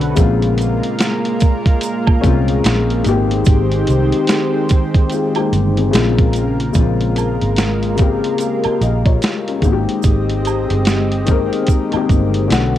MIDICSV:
0, 0, Header, 1, 6, 480
1, 0, Start_track
1, 0, Tempo, 821918
1, 103, Time_signature, 4, 2, 24, 8
1, 7465, End_track
2, 0, Start_track
2, 0, Title_t, "Analog synth pad"
2, 0, Program_c, 0, 89
2, 0, Note_on_c, 0, 50, 79
2, 0, Note_on_c, 0, 57, 71
2, 0, Note_on_c, 0, 59, 70
2, 0, Note_on_c, 0, 66, 72
2, 0, Note_on_c, 0, 71, 85
2, 98, Note_off_c, 0, 57, 0
2, 98, Note_off_c, 0, 59, 0
2, 98, Note_off_c, 0, 66, 0
2, 98, Note_off_c, 0, 71, 0
2, 99, Note_off_c, 0, 50, 0
2, 101, Note_on_c, 0, 65, 75
2, 102, Note_on_c, 0, 56, 77
2, 102, Note_on_c, 0, 70, 91
2, 103, Note_on_c, 0, 46, 85
2, 103, Note_on_c, 0, 58, 76
2, 1765, Note_off_c, 0, 65, 0
2, 1766, Note_off_c, 0, 46, 0
2, 1766, Note_off_c, 0, 58, 0
2, 1766, Note_off_c, 0, 70, 0
2, 1783, Note_on_c, 0, 60, 70
2, 1784, Note_on_c, 0, 67, 76
2, 1784, Note_on_c, 0, 72, 88
2, 1785, Note_on_c, 0, 51, 83
2, 3446, Note_off_c, 0, 60, 0
2, 3447, Note_off_c, 0, 51, 0
2, 3447, Note_off_c, 0, 67, 0
2, 3447, Note_off_c, 0, 72, 0
2, 3462, Note_on_c, 0, 49, 81
2, 3463, Note_on_c, 0, 58, 73
2, 3463, Note_on_c, 0, 65, 70
2, 3463, Note_on_c, 0, 70, 79
2, 3919, Note_off_c, 0, 56, 0
2, 3934, Note_off_c, 0, 65, 0
2, 3935, Note_off_c, 0, 58, 0
2, 3935, Note_off_c, 0, 70, 0
2, 3938, Note_off_c, 0, 49, 0
2, 3941, Note_on_c, 0, 56, 73
2, 3941, Note_on_c, 0, 65, 70
2, 3942, Note_on_c, 0, 58, 81
2, 3942, Note_on_c, 0, 70, 95
2, 5605, Note_off_c, 0, 56, 0
2, 5605, Note_off_c, 0, 65, 0
2, 5606, Note_off_c, 0, 58, 0
2, 5606, Note_off_c, 0, 70, 0
2, 5624, Note_on_c, 0, 75, 88
2, 5625, Note_on_c, 0, 56, 68
2, 5625, Note_on_c, 0, 67, 71
2, 5626, Note_on_c, 0, 60, 79
2, 7287, Note_off_c, 0, 56, 0
2, 7287, Note_off_c, 0, 75, 0
2, 7288, Note_off_c, 0, 60, 0
2, 7288, Note_off_c, 0, 67, 0
2, 7304, Note_on_c, 0, 69, 71
2, 7305, Note_on_c, 0, 66, 70
2, 7305, Note_on_c, 0, 71, 84
2, 7306, Note_on_c, 0, 59, 76
2, 7465, Note_off_c, 0, 59, 0
2, 7465, Note_off_c, 0, 66, 0
2, 7465, Note_off_c, 0, 69, 0
2, 7465, Note_off_c, 0, 71, 0
2, 7465, End_track
3, 0, Start_track
3, 0, Title_t, "Upright piano"
3, 0, Program_c, 1, 0
3, 0, Control_c, 1, 64, 127
3, 0, Note_on_c, 1, 50, 89
3, 0, Note_on_c, 1, 57, 82
3, 0, Note_on_c, 1, 59, 77
3, 0, Note_on_c, 1, 60, 52
3, 0, Note_on_c, 1, 61, 79
3, 0, Note_on_c, 1, 66, 95
3, 0, Note_on_c, 1, 68, 59
3, 90, Note_on_c, 1, 49, 87
3, 96, Note_on_c, 1, 56, 79
3, 105, Note_on_c, 1, 58, 82
3, 111, Control_c, 1, 64, 0
3, 112, Note_off_c, 1, 59, 0
3, 113, Note_off_c, 1, 60, 0
3, 113, Note_on_c, 1, 60, 80
3, 114, Note_off_c, 1, 57, 0
3, 114, Note_off_c, 1, 66, 0
3, 116, Note_off_c, 1, 50, 0
3, 116, Note_off_c, 1, 61, 0
3, 117, Note_off_c, 1, 68, 0
3, 122, Note_on_c, 1, 65, 101
3, 206, Control_c, 1, 64, 127
3, 761, Note_off_c, 1, 49, 0
3, 764, Note_off_c, 1, 56, 0
3, 769, Note_off_c, 1, 58, 0
3, 773, Note_off_c, 1, 60, 0
3, 777, Note_off_c, 1, 65, 0
3, 1291, Note_on_c, 1, 61, 92
3, 1298, Note_on_c, 1, 56, 84
3, 1307, Note_on_c, 1, 58, 79
3, 1315, Note_on_c, 1, 60, 82
3, 1323, Note_on_c, 1, 65, 104
3, 1769, Note_off_c, 1, 56, 0
3, 1770, Note_on_c, 1, 51, 79
3, 1777, Note_off_c, 1, 61, 0
3, 1777, Note_on_c, 1, 56, 79
3, 1778, Note_off_c, 1, 58, 0
3, 1787, Note_on_c, 1, 58, 85
3, 1789, Note_off_c, 1, 60, 0
3, 1790, Control_c, 1, 64, 0
3, 1793, Note_off_c, 1, 65, 0
3, 1795, Note_on_c, 1, 59, 63
3, 1802, Note_on_c, 1, 67, 99
3, 1833, Note_on_c, 1, 60, 80
3, 1836, Note_off_c, 1, 59, 0
3, 1889, Control_c, 1, 64, 127
3, 2556, Note_off_c, 1, 51, 0
3, 2559, Note_off_c, 1, 56, 0
3, 2564, Note_off_c, 1, 58, 0
3, 2571, Note_off_c, 1, 67, 0
3, 2587, Note_off_c, 1, 60, 0
3, 2988, Note_on_c, 1, 65, 64
3, 2992, Note_on_c, 1, 56, 55
3, 3126, Note_off_c, 1, 65, 0
3, 3128, Note_off_c, 1, 56, 0
3, 3133, Note_on_c, 1, 67, 74
3, 3136, Note_on_c, 1, 58, 57
3, 3360, Note_off_c, 1, 67, 0
3, 3361, Note_off_c, 1, 58, 0
3, 3375, Note_on_c, 1, 68, 62
3, 3378, Note_on_c, 1, 60, 55
3, 3451, Note_on_c, 1, 49, 85
3, 3459, Note_on_c, 1, 56, 82
3, 3466, Note_on_c, 1, 58, 79
3, 3467, Note_off_c, 1, 60, 0
3, 3471, Control_c, 1, 64, 0
3, 3475, Note_on_c, 1, 60, 80
3, 3484, Note_on_c, 1, 65, 92
3, 3558, Control_c, 1, 64, 127
3, 3601, Note_off_c, 1, 68, 0
3, 3863, Note_off_c, 1, 49, 0
3, 3867, Note_off_c, 1, 56, 0
3, 3871, Note_off_c, 1, 58, 0
3, 3875, Note_off_c, 1, 60, 0
3, 3879, Note_off_c, 1, 65, 0
3, 3929, Note_on_c, 1, 49, 82
3, 3937, Note_on_c, 1, 56, 78
3, 3943, Note_on_c, 1, 58, 74
3, 3950, Control_c, 1, 64, 0
3, 3953, Note_on_c, 1, 60, 80
3, 3960, Note_on_c, 1, 65, 91
3, 4049, Control_c, 1, 64, 127
3, 4424, Note_off_c, 1, 49, 0
3, 4428, Note_off_c, 1, 56, 0
3, 4431, Note_off_c, 1, 58, 0
3, 4436, Note_off_c, 1, 60, 0
3, 4439, Note_off_c, 1, 65, 0
3, 4647, Note_on_c, 1, 49, 82
3, 4656, Note_on_c, 1, 56, 75
3, 4665, Note_on_c, 1, 58, 81
3, 4673, Note_on_c, 1, 60, 78
3, 4680, Note_on_c, 1, 67, 88
3, 4899, Note_off_c, 1, 49, 0
3, 4904, Note_off_c, 1, 56, 0
3, 4908, Note_off_c, 1, 58, 0
3, 4908, Note_off_c, 1, 60, 0
3, 4912, Note_off_c, 1, 67, 0
3, 5146, Note_on_c, 1, 75, 68
3, 5150, Note_on_c, 1, 67, 55
3, 5285, Note_off_c, 1, 75, 0
3, 5287, Note_off_c, 1, 67, 0
3, 5292, Note_on_c, 1, 73, 64
3, 5296, Note_on_c, 1, 65, 56
3, 5520, Note_off_c, 1, 73, 0
3, 5521, Note_off_c, 1, 65, 0
3, 5534, Note_on_c, 1, 70, 59
3, 5536, Note_on_c, 1, 61, 57
3, 5608, Note_on_c, 1, 51, 80
3, 5617, Note_on_c, 1, 56, 77
3, 5625, Note_on_c, 1, 58, 81
3, 5631, Control_c, 1, 64, 0
3, 5634, Note_on_c, 1, 60, 76
3, 5642, Note_on_c, 1, 66, 69
3, 5679, Note_off_c, 1, 66, 0
3, 5679, Note_on_c, 1, 67, 93
3, 5720, Control_c, 1, 64, 127
3, 5760, Note_off_c, 1, 70, 0
3, 5761, Note_off_c, 1, 61, 0
3, 6395, Note_off_c, 1, 51, 0
3, 6399, Note_off_c, 1, 56, 0
3, 6403, Note_off_c, 1, 58, 0
3, 6407, Note_off_c, 1, 60, 0
3, 6430, Note_off_c, 1, 67, 0
3, 6571, Note_on_c, 1, 51, 85
3, 6580, Note_on_c, 1, 56, 77
3, 6588, Note_on_c, 1, 58, 77
3, 6595, Note_on_c, 1, 60, 76
3, 6605, Note_on_c, 1, 70, 96
3, 6821, Note_off_c, 1, 51, 0
3, 6826, Note_off_c, 1, 56, 0
3, 6830, Note_off_c, 1, 58, 0
3, 6833, Note_off_c, 1, 60, 0
3, 6838, Note_off_c, 1, 70, 0
3, 6955, Note_on_c, 1, 51, 89
3, 6963, Note_on_c, 1, 56, 77
3, 6971, Note_on_c, 1, 58, 82
3, 6979, Note_on_c, 1, 60, 74
3, 6987, Note_on_c, 1, 67, 90
3, 7288, Note_on_c, 1, 50, 89
3, 7295, Note_off_c, 1, 51, 0
3, 7295, Note_on_c, 1, 57, 79
3, 7299, Note_off_c, 1, 56, 0
3, 7303, Note_off_c, 1, 58, 0
3, 7303, Note_on_c, 1, 59, 74
3, 7307, Note_off_c, 1, 60, 0
3, 7310, Control_c, 1, 64, 0
3, 7311, Note_off_c, 1, 67, 0
3, 7311, Note_on_c, 1, 61, 77
3, 7320, Note_on_c, 1, 66, 97
3, 7406, Control_c, 1, 64, 127
3, 7465, Note_off_c, 1, 50, 0
3, 7465, Note_off_c, 1, 57, 0
3, 7465, Note_off_c, 1, 59, 0
3, 7465, Note_off_c, 1, 61, 0
3, 7465, Note_off_c, 1, 66, 0
3, 7465, End_track
4, 0, Start_track
4, 0, Title_t, "Fingered electric bass"
4, 0, Program_c, 2, 33
4, 0, Note_on_c, 2, 35, 103
4, 79, Note_off_c, 2, 35, 0
4, 103, Note_on_c, 2, 34, 113
4, 467, Note_off_c, 2, 34, 0
4, 1306, Note_on_c, 2, 36, 92
4, 1521, Note_off_c, 2, 36, 0
4, 1546, Note_on_c, 2, 34, 80
4, 1761, Note_off_c, 2, 34, 0
4, 1786, Note_on_c, 2, 32, 97
4, 2001, Note_off_c, 2, 32, 0
4, 2025, Note_on_c, 2, 32, 101
4, 2241, Note_off_c, 2, 32, 0
4, 2268, Note_on_c, 2, 36, 95
4, 2399, Note_off_c, 2, 36, 0
4, 3225, Note_on_c, 2, 31, 99
4, 3441, Note_off_c, 2, 31, 0
4, 3465, Note_on_c, 2, 34, 102
4, 3921, Note_off_c, 2, 34, 0
4, 3944, Note_on_c, 2, 34, 96
4, 4308, Note_off_c, 2, 34, 0
4, 4333, Note_on_c, 2, 32, 86
4, 4788, Note_off_c, 2, 32, 0
4, 5145, Note_on_c, 2, 34, 84
4, 5361, Note_off_c, 2, 34, 0
4, 5619, Note_on_c, 2, 32, 91
4, 5754, Note_off_c, 2, 32, 0
4, 5863, Note_on_c, 2, 32, 103
4, 6227, Note_off_c, 2, 32, 0
4, 6251, Note_on_c, 2, 31, 83
4, 6708, Note_off_c, 2, 31, 0
4, 7064, Note_on_c, 2, 31, 92
4, 7280, Note_off_c, 2, 31, 0
4, 7303, Note_on_c, 2, 35, 95
4, 7465, Note_off_c, 2, 35, 0
4, 7465, End_track
5, 0, Start_track
5, 0, Title_t, "Muted fingered electric bass strokes"
5, 1212, Note_on_c, 9, 29, 48
5, 1270, Note_off_c, 9, 29, 0
5, 5052, Note_on_c, 9, 29, 46
5, 5111, Note_off_c, 9, 29, 0
5, 6972, Note_on_c, 9, 29, 48
5, 7030, Note_off_c, 9, 29, 0
5, 7465, End_track
6, 0, Start_track
6, 0, Title_t, "Drums"
6, 9, Note_on_c, 9, 42, 47
6, 67, Note_off_c, 9, 42, 0
6, 97, Note_on_c, 9, 82, 75
6, 98, Note_on_c, 9, 42, 85
6, 102, Note_on_c, 9, 36, 107
6, 155, Note_off_c, 9, 82, 0
6, 157, Note_off_c, 9, 42, 0
6, 160, Note_off_c, 9, 36, 0
6, 248, Note_on_c, 9, 42, 36
6, 307, Note_off_c, 9, 42, 0
6, 338, Note_on_c, 9, 42, 63
6, 357, Note_on_c, 9, 82, 51
6, 396, Note_off_c, 9, 42, 0
6, 416, Note_off_c, 9, 82, 0
6, 487, Note_on_c, 9, 42, 49
6, 546, Note_off_c, 9, 42, 0
6, 576, Note_on_c, 9, 42, 94
6, 587, Note_on_c, 9, 38, 114
6, 591, Note_on_c, 9, 82, 65
6, 635, Note_off_c, 9, 42, 0
6, 645, Note_off_c, 9, 38, 0
6, 650, Note_off_c, 9, 82, 0
6, 730, Note_on_c, 9, 42, 34
6, 789, Note_off_c, 9, 42, 0
6, 819, Note_on_c, 9, 82, 53
6, 821, Note_on_c, 9, 42, 73
6, 829, Note_on_c, 9, 36, 94
6, 878, Note_off_c, 9, 82, 0
6, 879, Note_off_c, 9, 42, 0
6, 888, Note_off_c, 9, 36, 0
6, 968, Note_on_c, 9, 36, 89
6, 974, Note_on_c, 9, 42, 47
6, 1027, Note_off_c, 9, 36, 0
6, 1033, Note_off_c, 9, 42, 0
6, 1057, Note_on_c, 9, 42, 85
6, 1068, Note_on_c, 9, 82, 74
6, 1116, Note_off_c, 9, 42, 0
6, 1126, Note_off_c, 9, 82, 0
6, 1207, Note_on_c, 9, 76, 70
6, 1211, Note_on_c, 9, 36, 91
6, 1266, Note_off_c, 9, 76, 0
6, 1269, Note_off_c, 9, 36, 0
6, 1305, Note_on_c, 9, 36, 85
6, 1306, Note_on_c, 9, 82, 48
6, 1309, Note_on_c, 9, 42, 58
6, 1364, Note_off_c, 9, 36, 0
6, 1365, Note_off_c, 9, 82, 0
6, 1367, Note_off_c, 9, 42, 0
6, 1449, Note_on_c, 9, 42, 46
6, 1507, Note_off_c, 9, 42, 0
6, 1543, Note_on_c, 9, 42, 82
6, 1549, Note_on_c, 9, 82, 68
6, 1554, Note_on_c, 9, 38, 118
6, 1602, Note_off_c, 9, 42, 0
6, 1607, Note_off_c, 9, 82, 0
6, 1612, Note_off_c, 9, 38, 0
6, 1695, Note_on_c, 9, 42, 33
6, 1754, Note_off_c, 9, 42, 0
6, 1778, Note_on_c, 9, 42, 64
6, 1789, Note_on_c, 9, 82, 53
6, 1836, Note_off_c, 9, 42, 0
6, 1847, Note_off_c, 9, 82, 0
6, 1933, Note_on_c, 9, 42, 46
6, 1991, Note_off_c, 9, 42, 0
6, 2014, Note_on_c, 9, 82, 72
6, 2022, Note_on_c, 9, 42, 91
6, 2024, Note_on_c, 9, 36, 116
6, 2072, Note_off_c, 9, 82, 0
6, 2081, Note_off_c, 9, 42, 0
6, 2082, Note_off_c, 9, 36, 0
6, 2169, Note_on_c, 9, 42, 37
6, 2228, Note_off_c, 9, 42, 0
6, 2260, Note_on_c, 9, 42, 63
6, 2275, Note_on_c, 9, 82, 49
6, 2319, Note_off_c, 9, 42, 0
6, 2334, Note_off_c, 9, 82, 0
6, 2408, Note_on_c, 9, 42, 52
6, 2467, Note_off_c, 9, 42, 0
6, 2495, Note_on_c, 9, 42, 97
6, 2506, Note_on_c, 9, 38, 117
6, 2508, Note_on_c, 9, 82, 64
6, 2554, Note_off_c, 9, 42, 0
6, 2564, Note_off_c, 9, 38, 0
6, 2566, Note_off_c, 9, 82, 0
6, 2739, Note_on_c, 9, 82, 52
6, 2740, Note_on_c, 9, 42, 76
6, 2749, Note_on_c, 9, 36, 89
6, 2797, Note_off_c, 9, 82, 0
6, 2798, Note_off_c, 9, 42, 0
6, 2807, Note_off_c, 9, 36, 0
6, 2887, Note_on_c, 9, 36, 85
6, 2893, Note_on_c, 9, 42, 43
6, 2946, Note_off_c, 9, 36, 0
6, 2951, Note_off_c, 9, 42, 0
6, 2975, Note_on_c, 9, 42, 91
6, 2988, Note_on_c, 9, 82, 76
6, 3034, Note_off_c, 9, 42, 0
6, 3047, Note_off_c, 9, 82, 0
6, 3124, Note_on_c, 9, 42, 33
6, 3129, Note_on_c, 9, 76, 65
6, 3183, Note_off_c, 9, 42, 0
6, 3188, Note_off_c, 9, 76, 0
6, 3229, Note_on_c, 9, 42, 54
6, 3230, Note_on_c, 9, 82, 45
6, 3288, Note_off_c, 9, 42, 0
6, 3289, Note_off_c, 9, 82, 0
6, 3371, Note_on_c, 9, 42, 46
6, 3430, Note_off_c, 9, 42, 0
6, 3466, Note_on_c, 9, 42, 76
6, 3469, Note_on_c, 9, 82, 66
6, 3477, Note_on_c, 9, 38, 112
6, 3524, Note_off_c, 9, 42, 0
6, 3528, Note_off_c, 9, 82, 0
6, 3535, Note_off_c, 9, 38, 0
6, 3613, Note_on_c, 9, 36, 85
6, 3615, Note_on_c, 9, 42, 32
6, 3671, Note_off_c, 9, 36, 0
6, 3674, Note_off_c, 9, 42, 0
6, 3698, Note_on_c, 9, 42, 69
6, 3712, Note_on_c, 9, 82, 48
6, 3757, Note_off_c, 9, 42, 0
6, 3770, Note_off_c, 9, 82, 0
6, 3855, Note_on_c, 9, 42, 49
6, 3913, Note_off_c, 9, 42, 0
6, 3935, Note_on_c, 9, 82, 72
6, 3943, Note_on_c, 9, 36, 107
6, 3943, Note_on_c, 9, 42, 80
6, 3993, Note_off_c, 9, 82, 0
6, 4002, Note_off_c, 9, 36, 0
6, 4002, Note_off_c, 9, 42, 0
6, 4092, Note_on_c, 9, 42, 36
6, 4150, Note_off_c, 9, 42, 0
6, 4182, Note_on_c, 9, 42, 57
6, 4193, Note_on_c, 9, 76, 64
6, 4193, Note_on_c, 9, 82, 50
6, 4241, Note_off_c, 9, 42, 0
6, 4251, Note_off_c, 9, 76, 0
6, 4251, Note_off_c, 9, 82, 0
6, 4331, Note_on_c, 9, 42, 48
6, 4389, Note_off_c, 9, 42, 0
6, 4418, Note_on_c, 9, 42, 88
6, 4427, Note_on_c, 9, 82, 65
6, 4429, Note_on_c, 9, 38, 116
6, 4477, Note_off_c, 9, 42, 0
6, 4485, Note_off_c, 9, 82, 0
6, 4487, Note_off_c, 9, 38, 0
6, 4572, Note_on_c, 9, 42, 32
6, 4630, Note_off_c, 9, 42, 0
6, 4658, Note_on_c, 9, 82, 47
6, 4660, Note_on_c, 9, 42, 70
6, 4669, Note_on_c, 9, 36, 91
6, 4716, Note_off_c, 9, 82, 0
6, 4718, Note_off_c, 9, 42, 0
6, 4727, Note_off_c, 9, 36, 0
6, 4813, Note_on_c, 9, 42, 42
6, 4872, Note_off_c, 9, 42, 0
6, 4895, Note_on_c, 9, 42, 85
6, 4907, Note_on_c, 9, 82, 78
6, 4954, Note_off_c, 9, 42, 0
6, 4965, Note_off_c, 9, 82, 0
6, 5043, Note_on_c, 9, 42, 33
6, 5048, Note_on_c, 9, 76, 63
6, 5102, Note_off_c, 9, 42, 0
6, 5107, Note_off_c, 9, 76, 0
6, 5148, Note_on_c, 9, 42, 52
6, 5149, Note_on_c, 9, 82, 47
6, 5206, Note_off_c, 9, 42, 0
6, 5207, Note_off_c, 9, 82, 0
6, 5288, Note_on_c, 9, 36, 86
6, 5289, Note_on_c, 9, 42, 44
6, 5347, Note_off_c, 9, 36, 0
6, 5348, Note_off_c, 9, 42, 0
6, 5384, Note_on_c, 9, 42, 79
6, 5386, Note_on_c, 9, 82, 66
6, 5395, Note_on_c, 9, 38, 118
6, 5443, Note_off_c, 9, 42, 0
6, 5445, Note_off_c, 9, 82, 0
6, 5454, Note_off_c, 9, 38, 0
6, 5535, Note_on_c, 9, 42, 32
6, 5593, Note_off_c, 9, 42, 0
6, 5617, Note_on_c, 9, 42, 62
6, 5618, Note_on_c, 9, 36, 81
6, 5627, Note_on_c, 9, 82, 49
6, 5676, Note_off_c, 9, 42, 0
6, 5677, Note_off_c, 9, 36, 0
6, 5685, Note_off_c, 9, 82, 0
6, 5774, Note_on_c, 9, 42, 50
6, 5833, Note_off_c, 9, 42, 0
6, 5855, Note_on_c, 9, 82, 71
6, 5863, Note_on_c, 9, 36, 108
6, 5863, Note_on_c, 9, 42, 84
6, 5913, Note_off_c, 9, 82, 0
6, 5921, Note_off_c, 9, 36, 0
6, 5921, Note_off_c, 9, 42, 0
6, 6012, Note_on_c, 9, 42, 36
6, 6070, Note_off_c, 9, 42, 0
6, 6103, Note_on_c, 9, 42, 58
6, 6114, Note_on_c, 9, 76, 67
6, 6114, Note_on_c, 9, 82, 46
6, 6161, Note_off_c, 9, 42, 0
6, 6172, Note_off_c, 9, 76, 0
6, 6172, Note_off_c, 9, 82, 0
6, 6250, Note_on_c, 9, 42, 50
6, 6308, Note_off_c, 9, 42, 0
6, 6337, Note_on_c, 9, 42, 89
6, 6347, Note_on_c, 9, 82, 66
6, 6348, Note_on_c, 9, 38, 115
6, 6395, Note_off_c, 9, 42, 0
6, 6406, Note_off_c, 9, 38, 0
6, 6406, Note_off_c, 9, 82, 0
6, 6492, Note_on_c, 9, 42, 33
6, 6550, Note_off_c, 9, 42, 0
6, 6579, Note_on_c, 9, 42, 71
6, 6579, Note_on_c, 9, 82, 48
6, 6588, Note_on_c, 9, 36, 86
6, 6637, Note_off_c, 9, 42, 0
6, 6637, Note_off_c, 9, 82, 0
6, 6646, Note_off_c, 9, 36, 0
6, 6731, Note_on_c, 9, 42, 42
6, 6790, Note_off_c, 9, 42, 0
6, 6813, Note_on_c, 9, 42, 82
6, 6822, Note_on_c, 9, 36, 82
6, 6828, Note_on_c, 9, 82, 75
6, 6871, Note_off_c, 9, 42, 0
6, 6881, Note_off_c, 9, 36, 0
6, 6886, Note_off_c, 9, 82, 0
6, 6960, Note_on_c, 9, 42, 33
6, 6969, Note_on_c, 9, 76, 65
6, 7019, Note_off_c, 9, 42, 0
6, 7028, Note_off_c, 9, 76, 0
6, 7062, Note_on_c, 9, 36, 79
6, 7065, Note_on_c, 9, 42, 54
6, 7071, Note_on_c, 9, 82, 49
6, 7121, Note_off_c, 9, 36, 0
6, 7124, Note_off_c, 9, 42, 0
6, 7129, Note_off_c, 9, 82, 0
6, 7207, Note_on_c, 9, 42, 46
6, 7265, Note_off_c, 9, 42, 0
6, 7302, Note_on_c, 9, 42, 80
6, 7309, Note_on_c, 9, 82, 64
6, 7313, Note_on_c, 9, 38, 119
6, 7361, Note_off_c, 9, 42, 0
6, 7367, Note_off_c, 9, 82, 0
6, 7372, Note_off_c, 9, 38, 0
6, 7465, End_track
0, 0, End_of_file